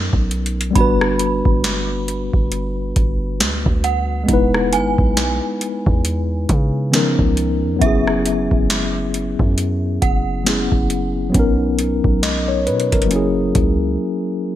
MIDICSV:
0, 0, Header, 1, 5, 480
1, 0, Start_track
1, 0, Tempo, 882353
1, 411, Time_signature, 4, 2, 24, 8
1, 7918, End_track
2, 0, Start_track
2, 0, Title_t, "Synth bell"
2, 0, Program_c, 0, 98
2, 410, Note_on_c, 0, 83, 74
2, 1790, Note_off_c, 0, 83, 0
2, 2090, Note_on_c, 0, 78, 71
2, 2549, Note_off_c, 0, 78, 0
2, 2572, Note_on_c, 0, 80, 73
2, 3951, Note_off_c, 0, 80, 0
2, 4251, Note_on_c, 0, 76, 84
2, 5450, Note_on_c, 0, 78, 67
2, 5630, Note_off_c, 0, 76, 0
2, 6389, Note_off_c, 0, 78, 0
2, 7918, End_track
3, 0, Start_track
3, 0, Title_t, "Tine electric piano"
3, 0, Program_c, 1, 4
3, 0, Control_c, 1, 64, 127
3, 0, Note_on_c, 1, 54, 81
3, 0, Note_on_c, 1, 59, 74
3, 0, Note_on_c, 1, 61, 74
3, 0, Note_on_c, 1, 63, 80
3, 0, Note_on_c, 1, 70, 91
3, 375, Note_off_c, 1, 54, 0
3, 382, Note_off_c, 1, 59, 0
3, 384, Note_on_c, 1, 55, 81
3, 389, Note_off_c, 1, 61, 0
3, 395, Note_off_c, 1, 63, 0
3, 398, Note_on_c, 1, 59, 79
3, 402, Note_off_c, 1, 70, 0
3, 411, Note_on_c, 1, 62, 75
3, 417, Control_c, 1, 64, 0
3, 424, Note_on_c, 1, 66, 78
3, 438, Note_on_c, 1, 71, 89
3, 506, Control_c, 1, 64, 127
3, 2296, Note_off_c, 1, 55, 0
3, 2303, Note_off_c, 1, 59, 0
3, 2305, Note_on_c, 1, 56, 78
3, 2309, Note_off_c, 1, 62, 0
3, 2316, Note_off_c, 1, 66, 0
3, 2318, Note_on_c, 1, 59, 77
3, 2323, Note_off_c, 1, 71, 0
3, 2332, Note_on_c, 1, 63, 76
3, 2337, Control_c, 1, 64, 0
3, 2345, Note_on_c, 1, 64, 73
3, 2358, Note_on_c, 1, 71, 89
3, 2427, Control_c, 1, 64, 127
3, 3736, Note_off_c, 1, 56, 0
3, 3743, Note_off_c, 1, 59, 0
3, 3750, Note_off_c, 1, 63, 0
3, 3756, Note_off_c, 1, 64, 0
3, 3758, Note_on_c, 1, 51, 66
3, 3763, Note_off_c, 1, 71, 0
3, 3765, Note_on_c, 1, 59, 78
3, 3771, Note_on_c, 1, 61, 80
3, 3777, Control_c, 1, 64, 0
3, 3778, Note_on_c, 1, 63, 76
3, 3785, Note_on_c, 1, 70, 90
3, 3793, Note_on_c, 1, 53, 82
3, 3805, Note_off_c, 1, 51, 0
3, 3863, Control_c, 1, 64, 127
3, 4224, Note_on_c, 1, 54, 83
3, 4231, Note_off_c, 1, 59, 0
3, 4238, Note_on_c, 1, 59, 78
3, 4245, Note_off_c, 1, 61, 0
3, 4251, Note_on_c, 1, 61, 75
3, 4254, Note_off_c, 1, 63, 0
3, 4257, Control_c, 1, 64, 0
3, 4258, Note_off_c, 1, 70, 0
3, 4262, Note_off_c, 1, 53, 0
3, 4265, Note_on_c, 1, 64, 74
3, 4278, Note_on_c, 1, 68, 97
3, 4350, Control_c, 1, 64, 127
3, 5656, Note_off_c, 1, 54, 0
3, 5663, Note_off_c, 1, 59, 0
3, 5669, Note_off_c, 1, 61, 0
3, 5676, Note_off_c, 1, 64, 0
3, 5678, Note_on_c, 1, 54, 64
3, 5683, Note_off_c, 1, 68, 0
3, 5685, Note_on_c, 1, 59, 59
3, 5692, Note_on_c, 1, 61, 60
3, 5699, Note_on_c, 1, 64, 60
3, 5705, Note_on_c, 1, 68, 72
3, 6138, Note_off_c, 1, 54, 0
3, 6145, Note_on_c, 1, 54, 81
3, 6152, Note_off_c, 1, 59, 0
3, 6158, Note_on_c, 1, 59, 79
3, 6165, Note_off_c, 1, 61, 0
3, 6172, Note_on_c, 1, 61, 77
3, 6175, Note_off_c, 1, 64, 0
3, 6177, Control_c, 1, 64, 0
3, 6178, Note_off_c, 1, 68, 0
3, 6185, Note_on_c, 1, 63, 77
3, 6198, Note_on_c, 1, 70, 95
3, 6270, Control_c, 1, 64, 127
3, 6652, Note_on_c, 1, 75, 72
3, 6655, Note_off_c, 1, 70, 0
3, 6784, Note_off_c, 1, 75, 0
3, 6791, Note_on_c, 1, 73, 74
3, 6886, Note_off_c, 1, 73, 0
3, 6891, Note_on_c, 1, 71, 79
3, 7023, Note_off_c, 1, 71, 0
3, 7031, Note_on_c, 1, 70, 72
3, 7098, Note_off_c, 1, 54, 0
3, 7104, Note_on_c, 1, 54, 80
3, 7105, Note_off_c, 1, 59, 0
3, 7112, Note_off_c, 1, 61, 0
3, 7117, Note_on_c, 1, 58, 73
3, 7119, Note_off_c, 1, 63, 0
3, 7131, Note_on_c, 1, 61, 71
3, 7138, Control_c, 1, 64, 0
3, 7144, Note_on_c, 1, 64, 75
3, 7158, Note_on_c, 1, 68, 90
3, 7246, Control_c, 1, 64, 127
3, 7258, Note_off_c, 1, 70, 0
3, 7918, Note_off_c, 1, 54, 0
3, 7918, Note_off_c, 1, 58, 0
3, 7918, Note_off_c, 1, 61, 0
3, 7918, Note_off_c, 1, 64, 0
3, 7918, Note_off_c, 1, 68, 0
3, 7918, End_track
4, 0, Start_track
4, 0, Title_t, "808-style bass"
4, 0, Program_c, 2, 38
4, 0, Note_on_c, 2, 42, 111
4, 56, Note_off_c, 2, 42, 0
4, 72, Note_on_c, 2, 35, 112
4, 398, Note_off_c, 2, 35, 0
4, 412, Note_on_c, 2, 31, 121
4, 776, Note_off_c, 2, 31, 0
4, 792, Note_on_c, 2, 31, 111
4, 1252, Note_off_c, 2, 31, 0
4, 1271, Note_on_c, 2, 31, 103
4, 1598, Note_off_c, 2, 31, 0
4, 1612, Note_on_c, 2, 31, 110
4, 1853, Note_on_c, 2, 38, 100
4, 1861, Note_off_c, 2, 31, 0
4, 1984, Note_off_c, 2, 38, 0
4, 1991, Note_on_c, 2, 38, 108
4, 2318, Note_off_c, 2, 38, 0
4, 2333, Note_on_c, 2, 28, 112
4, 2574, Note_on_c, 2, 32, 100
4, 2582, Note_off_c, 2, 28, 0
4, 2705, Note_off_c, 2, 32, 0
4, 2713, Note_on_c, 2, 35, 100
4, 2942, Note_off_c, 2, 35, 0
4, 3192, Note_on_c, 2, 40, 112
4, 3518, Note_off_c, 2, 40, 0
4, 3533, Note_on_c, 2, 49, 100
4, 3896, Note_off_c, 2, 49, 0
4, 3911, Note_on_c, 2, 37, 115
4, 4153, Note_on_c, 2, 41, 94
4, 4161, Note_off_c, 2, 37, 0
4, 4247, Note_off_c, 2, 41, 0
4, 4252, Note_on_c, 2, 30, 110
4, 4616, Note_off_c, 2, 30, 0
4, 4632, Note_on_c, 2, 30, 103
4, 5092, Note_off_c, 2, 30, 0
4, 5112, Note_on_c, 2, 42, 105
4, 5438, Note_off_c, 2, 42, 0
4, 5453, Note_on_c, 2, 30, 107
4, 5816, Note_off_c, 2, 30, 0
4, 5832, Note_on_c, 2, 30, 106
4, 6158, Note_off_c, 2, 30, 0
4, 6173, Note_on_c, 2, 35, 115
4, 6536, Note_off_c, 2, 35, 0
4, 6553, Note_on_c, 2, 35, 107
4, 6894, Note_on_c, 2, 47, 100
4, 6902, Note_off_c, 2, 35, 0
4, 7025, Note_off_c, 2, 47, 0
4, 7032, Note_on_c, 2, 30, 107
4, 7358, Note_off_c, 2, 30, 0
4, 7374, Note_on_c, 2, 37, 110
4, 7603, Note_off_c, 2, 37, 0
4, 7918, End_track
5, 0, Start_track
5, 0, Title_t, "Drums"
5, 70, Note_on_c, 9, 36, 86
5, 125, Note_off_c, 9, 36, 0
5, 169, Note_on_c, 9, 46, 67
5, 170, Note_on_c, 9, 42, 38
5, 223, Note_off_c, 9, 46, 0
5, 225, Note_off_c, 9, 42, 0
5, 250, Note_on_c, 9, 42, 50
5, 305, Note_off_c, 9, 42, 0
5, 330, Note_on_c, 9, 42, 67
5, 385, Note_off_c, 9, 42, 0
5, 411, Note_on_c, 9, 36, 126
5, 411, Note_on_c, 9, 42, 75
5, 465, Note_off_c, 9, 36, 0
5, 465, Note_off_c, 9, 42, 0
5, 551, Note_on_c, 9, 37, 98
5, 606, Note_off_c, 9, 37, 0
5, 650, Note_on_c, 9, 42, 76
5, 704, Note_off_c, 9, 42, 0
5, 791, Note_on_c, 9, 36, 104
5, 845, Note_off_c, 9, 36, 0
5, 892, Note_on_c, 9, 42, 73
5, 893, Note_on_c, 9, 38, 122
5, 946, Note_off_c, 9, 42, 0
5, 948, Note_off_c, 9, 38, 0
5, 1133, Note_on_c, 9, 42, 68
5, 1187, Note_off_c, 9, 42, 0
5, 1270, Note_on_c, 9, 36, 98
5, 1325, Note_off_c, 9, 36, 0
5, 1369, Note_on_c, 9, 42, 81
5, 1423, Note_off_c, 9, 42, 0
5, 1610, Note_on_c, 9, 42, 55
5, 1611, Note_on_c, 9, 36, 100
5, 1665, Note_off_c, 9, 42, 0
5, 1666, Note_off_c, 9, 36, 0
5, 1852, Note_on_c, 9, 42, 68
5, 1853, Note_on_c, 9, 38, 121
5, 1906, Note_off_c, 9, 42, 0
5, 1907, Note_off_c, 9, 38, 0
5, 1990, Note_on_c, 9, 36, 90
5, 2045, Note_off_c, 9, 36, 0
5, 2088, Note_on_c, 9, 42, 61
5, 2143, Note_off_c, 9, 42, 0
5, 2331, Note_on_c, 9, 36, 123
5, 2331, Note_on_c, 9, 42, 77
5, 2385, Note_off_c, 9, 36, 0
5, 2386, Note_off_c, 9, 42, 0
5, 2472, Note_on_c, 9, 37, 95
5, 2526, Note_off_c, 9, 37, 0
5, 2571, Note_on_c, 9, 42, 80
5, 2625, Note_off_c, 9, 42, 0
5, 2711, Note_on_c, 9, 36, 101
5, 2766, Note_off_c, 9, 36, 0
5, 2812, Note_on_c, 9, 42, 72
5, 2813, Note_on_c, 9, 38, 127
5, 2866, Note_off_c, 9, 42, 0
5, 2868, Note_off_c, 9, 38, 0
5, 3053, Note_on_c, 9, 42, 69
5, 3107, Note_off_c, 9, 42, 0
5, 3190, Note_on_c, 9, 36, 106
5, 3245, Note_off_c, 9, 36, 0
5, 3290, Note_on_c, 9, 42, 82
5, 3344, Note_off_c, 9, 42, 0
5, 3531, Note_on_c, 9, 36, 98
5, 3531, Note_on_c, 9, 42, 55
5, 3586, Note_off_c, 9, 36, 0
5, 3586, Note_off_c, 9, 42, 0
5, 3772, Note_on_c, 9, 42, 74
5, 3773, Note_on_c, 9, 38, 127
5, 3827, Note_off_c, 9, 42, 0
5, 3828, Note_off_c, 9, 38, 0
5, 3910, Note_on_c, 9, 36, 92
5, 3965, Note_off_c, 9, 36, 0
5, 4010, Note_on_c, 9, 42, 58
5, 4064, Note_off_c, 9, 42, 0
5, 4251, Note_on_c, 9, 36, 123
5, 4252, Note_on_c, 9, 42, 73
5, 4305, Note_off_c, 9, 36, 0
5, 4306, Note_off_c, 9, 42, 0
5, 4393, Note_on_c, 9, 37, 91
5, 4447, Note_off_c, 9, 37, 0
5, 4491, Note_on_c, 9, 42, 80
5, 4545, Note_off_c, 9, 42, 0
5, 4631, Note_on_c, 9, 36, 96
5, 4686, Note_off_c, 9, 36, 0
5, 4732, Note_on_c, 9, 42, 71
5, 4733, Note_on_c, 9, 38, 127
5, 4787, Note_off_c, 9, 42, 0
5, 4788, Note_off_c, 9, 38, 0
5, 4973, Note_on_c, 9, 42, 66
5, 5027, Note_off_c, 9, 42, 0
5, 5110, Note_on_c, 9, 36, 108
5, 5165, Note_off_c, 9, 36, 0
5, 5210, Note_on_c, 9, 42, 79
5, 5264, Note_off_c, 9, 42, 0
5, 5451, Note_on_c, 9, 36, 104
5, 5451, Note_on_c, 9, 42, 55
5, 5506, Note_off_c, 9, 36, 0
5, 5506, Note_off_c, 9, 42, 0
5, 5693, Note_on_c, 9, 42, 75
5, 5694, Note_on_c, 9, 38, 121
5, 5747, Note_off_c, 9, 42, 0
5, 5748, Note_off_c, 9, 38, 0
5, 5831, Note_on_c, 9, 36, 90
5, 5885, Note_off_c, 9, 36, 0
5, 5930, Note_on_c, 9, 42, 61
5, 5984, Note_off_c, 9, 42, 0
5, 6171, Note_on_c, 9, 36, 127
5, 6172, Note_on_c, 9, 42, 79
5, 6226, Note_off_c, 9, 36, 0
5, 6226, Note_off_c, 9, 42, 0
5, 6411, Note_on_c, 9, 42, 78
5, 6466, Note_off_c, 9, 42, 0
5, 6552, Note_on_c, 9, 36, 99
5, 6606, Note_off_c, 9, 36, 0
5, 6652, Note_on_c, 9, 42, 72
5, 6654, Note_on_c, 9, 38, 125
5, 6707, Note_off_c, 9, 42, 0
5, 6708, Note_off_c, 9, 38, 0
5, 6891, Note_on_c, 9, 42, 41
5, 6946, Note_off_c, 9, 42, 0
5, 6961, Note_on_c, 9, 42, 52
5, 7015, Note_off_c, 9, 42, 0
5, 7031, Note_on_c, 9, 36, 110
5, 7031, Note_on_c, 9, 42, 63
5, 7081, Note_off_c, 9, 42, 0
5, 7081, Note_on_c, 9, 42, 74
5, 7085, Note_off_c, 9, 36, 0
5, 7130, Note_off_c, 9, 42, 0
5, 7130, Note_on_c, 9, 42, 85
5, 7185, Note_off_c, 9, 42, 0
5, 7371, Note_on_c, 9, 42, 58
5, 7372, Note_on_c, 9, 36, 100
5, 7426, Note_off_c, 9, 36, 0
5, 7426, Note_off_c, 9, 42, 0
5, 7918, End_track
0, 0, End_of_file